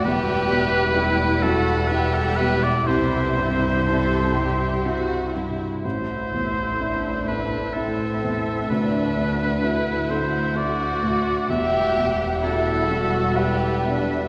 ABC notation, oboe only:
X:1
M:3/4
L:1/16
Q:1/4=64
K:Em
V:1 name="Oboe"
B6 A2 B A B d | c8- c2 z2 | c6 B2 A4 | B6 c2 d4 |
e3 z A4 B4 |]